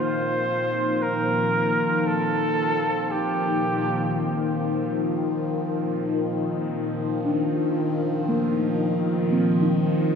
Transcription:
0.00 10.15 A#2 medium
0.00 10.15 D#3 medium
0.00 10.15 F3 medium
0.00 10.15 C4 medium
0.00 10.15 F4 medium
0.00 1.04 C5 loud
1.02 2.44 D#4 medium
1.02 2.08 A#4 medium
2.07 3.49 F4 soft
2.07 3.12 A4 loud
3.11 4.66 G4 medium
3.15 4.53 D#4 soft
7.25 8.65 D4 medium
7.56 8.93 F4 soft
8.29 9.68 A3 soft
8.29 9.30 A#3 medium
9.31 10.15 A#3 medium
9.31 10.15 C4 soft
9.62 10.15 D#4 soft

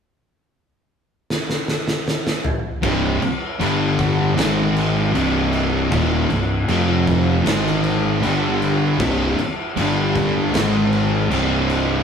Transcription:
1.30 snare medium
1.50 snare medium
1.68 snare medium
1.88 snare medium
2.08 snare medium
2.27 snare loud
2.45 mid tom loud
2.82 3.19 C1 medium
2.82 3.20 C2 medium
2.82 3.20 G2 loud
2.82 3.20 C3 loud
2.82 kick loud
2.82 crash medium
3.22 muted distorted electric guitar stroke medium
3.22 muted fingered electric bass stroke soft
3.22 crash medium
3.60 4.33 G1 medium
3.60 4.36 G2 medium
3.60 4.36 D3 loud
3.60 4.36 G3 loud
3.60 crash medium
3.99 kick medium
3.99 crash medium
4.37 5.10 G#1 loud
4.37 5.13 G#2 medium
4.37 5.13 D#3 loud
4.37 5.13 G#3 loud
4.37 snare loud
4.37 crash medium
4.76 crash medium
5.14 5.87 C1 medium
5.14 5.90 C2 loud
5.14 5.90 G2 loud
5.14 5.91 C3 loud
5.14 crash medium
5.53 crash medium
5.92 6.27 D#1 loud
5.92 6.29 D#2 loud
5.92 6.29 A#2 loud
5.92 6.29 D#3 loud
5.92 kick loud
5.92 crash medium
6.29 6.65 C1 medium
6.29 6.61 C2 medium
6.29 6.61 G2 medium
6.29 crash medium
6.67 7.41 F1 loud
6.67 7.45 F2 medium
6.67 7.45 C3 medium
6.67 7.45 F3 loud
6.67 crash medium
7.07 kick medium
7.07 crash medium
7.46 8.19 G#1 medium
7.46 8.21 G#2 loud
7.46 8.22 D#3 loud
7.46 8.22 G#3 medium
7.46 snare loud
7.46 crash medium
7.67 snare soft
7.84 crash medium
8.23 8.96 G1 loud
8.23 8.99 G2 medium
8.23 8.99 D3 medium
8.23 8.99 G3 loud
8.23 crash medium
8.62 crash medium
9.00 9.35 C1 medium
9.00 9.37 C2 medium
9.00 9.38 G2 loud
9.00 9.38 C3 loud
9.00 kick loud
9.00 crash medium
9.38 muted fingered electric bass stroke soft
9.38 muted distorted electric guitar stroke medium
9.38 crash medium
9.76 10.49 G1 loud
9.76 10.53 G2 loud
9.76 10.53 D3 loud
9.76 10.54 G3 loud
9.76 crash medium
10.16 kick medium
10.16 crash medium
10.53 11.26 G#1 loud
10.53 11.30 G#2 medium
10.53 11.30 D#3 loud
10.53 11.30 G#3 loud
10.53 snare loud
10.53 crash medium
10.93 crash medium
11.29 12.03 C1 loud
11.29 12.03 C2 medium
11.29 12.03 G2 loud
11.29 12.03 C3 loud
11.29 crash medium
11.70 crash medium

